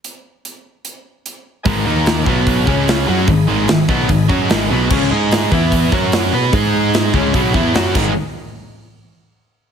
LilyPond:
<<
  \new Staff \with { instrumentName = "Tonewheel organ" } { \time 4/4 \key gis \minor \tempo 4 = 148 << { r1 | <dis'' gis''>8 dis''4 <b' b''>4 cis''4 <dis'' b''>8~ | <dis'' b''>1 | cis''8 dis''4 e''4 cis''4. |
dis''4. cis''2 <gis dis' ais'>8 | r1 | } \\ { r1 | b'8 ais'4 fis'4 gis'4.~ | gis'1~ | gis'4. b'4 fis'4 gis'8~ |
gis'4. gis'4. fis'8 r8 | r1 | } >> }
  \new Staff \with { instrumentName = "Distorted electric guitar" } { \clef bass \time 4/4 \key gis \minor r1 | <gis, dis gis>8 <dis ais dis'>4 <b, fis b>4 <cis gis cis'>4 <fis cis' fis'>8 | <gis, dis>8 <gis, dis gis>8 <gis, dis>8 <b, fis b>8 <gis, dis>8 <fis cis' fis'>8 <gis, dis gis>8 <b, fis b>8 | <cis gis cis'>8 <gis dis' gis'>4 <e b e'>4 <fis cis' fis'>4 <b fis' b'>8 |
<gis dis' gis'>4. <cis gis cis'>8 <b, fis b>8 <e b e'>8 <fis cis' fis'>8 <gis, dis gis>8 | r1 | }
  \new Staff \with { instrumentName = "Distorted electric guitar" } { \clef bass \time 4/4 \key gis \minor r1 | <gis, dis gis>8 <dis ais dis'>4 <b, fis b>4 <cis gis cis'>4 <fis cis' fis'>8 | <gis, dis>8 <gis, dis gis>8 <gis, dis>8 <b, fis b>8 <gis, dis>8 <fis cis' fis'>8 <gis, dis gis>8 <b, fis b>8 | <cis gis cis'>8 <gis dis' gis'>4 <e b e'>4 <fis cis' fis'>4 <b fis' b'>8 |
<gis dis' gis'>4. <cis gis cis'>8 <b, fis b>8 <e b e'>8 <fis cis' fis'>8 <gis, dis gis>8 | r1 | }
  \new Staff \with { instrumentName = "Distorted electric guitar" } { \clef bass \time 4/4 \key gis \minor r1 | <gis, dis gis>8 <dis ais dis'>4 <b, fis b>4 <cis gis cis'>4 <fis cis' fis'>8 | <gis, dis>8 <gis, dis gis>8 <gis, dis>8 <b, fis b>8 <gis, dis>8 <fis cis' fis'>8 <gis, dis gis>8 <b, fis b>8 | <cis gis cis'>8 <gis dis' gis'>4 <e b e'>4 <fis cis' fis'>4 <b fis' b'>8 |
<gis dis' gis'>4. <cis gis cis'>8 <b, fis b>8 <e b e'>8 <fis cis' fis'>8 <gis, dis gis>8 | r1 | }
  \new Staff \with { instrumentName = "Picked electric bass" } { \clef bass \time 4/4 \key gis \minor r1 | gis,,8 dis,4 b,,4 cis,4 fis,8 | gis,,8 gis,,8 gis,,8 b,,8 gis,,8 fis,8 gis,,8 b,,8 | cis,8 gis,4 e,4 fis,4 b,8 |
gis,4. cis,8 b,,8 e,8 fis,8 gis,,8 | r1 | }
  \new DrumStaff \with { instrumentName = "Drums" } \drummode { \time 4/4 hh4 hh4 hh4 hh4 | <hho bd>4 <hho sn>8 bd8 <hho bd>8 bd8 <hho sn>4 | <hho bd>4 <hho sn>8 bd8 <hho bd>8 bd8 <hho sn>4 | <cymc bd>4 <hho sn>8 bd8 <hho bd>8 bd8 <hho sn>4 |
<hho bd>4 <hho sn>8 bd8 <hho bd>8 bd8 <hho sn>8 <cymc bd>8 | r4 r4 r4 r4 | }
>>